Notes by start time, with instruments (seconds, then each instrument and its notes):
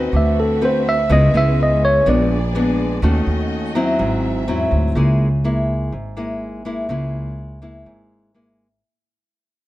Already playing: nylon-string guitar D#3 C4 F#4 B4, violin section C#4 F#4 D#5
0.13 upright bass D2, nylon-string guitar D3, violin section C4 F#4 B4 E5, tine electric piano E5
0.40 tine electric piano A4
0.61 nylon-string guitar C4 F#4 B4, tine electric piano C5
0.89 tine electric piano E5
1.09 upright bass C#2, nylon-string guitar C#3 G#3 B3 E4, violin section C#4, tine electric piano D#5
1.34 upright bass C#2, nylon-string guitar G#3 B3 E4, tine electric piano E5
1.63 tine electric piano D#5
1.85 tine electric piano C#5
2.06 upright bass A#1, nylon-string guitar A#2 G#3 B3 D4, violin section B3 G#4 D5, tine electric piano D5
2.55 nylon-string guitar G#3 B3 D4
3.02 upright bass D#2, nylon-string guitar D#3 A3 C#4 F#4, violin section C#4 F#4 D#5
3.27 upright bass D#2
3.75 nylon-string guitar F#3 C4 E4
3.99 upright bass G#1, nylon-string guitar G#2, violin section C4 E5
4.48 upright bass E2, nylon-string guitar F#3 C4 E4
4.71 upright bass D2
4.95 upright bass C#2, nylon-string guitar C#3 G#3 A#3 E4
5.44 nylon-string guitar G#3 A#3 E4
5.92 upright bass G#1, nylon-string guitar G#2
6.17 nylon-string guitar G#3 A#3 E4
6.65 nylon-string guitar G#3 A#3 E4
6.89 upright bass C#2, nylon-string guitar C#3 G#3 A#3 E4
7.62 nylon-string guitar G#3 A#3 E4
7.86 upright bass G#1, nylon-string guitar G#2
8.34 nylon-string guitar G#3 A#3 E4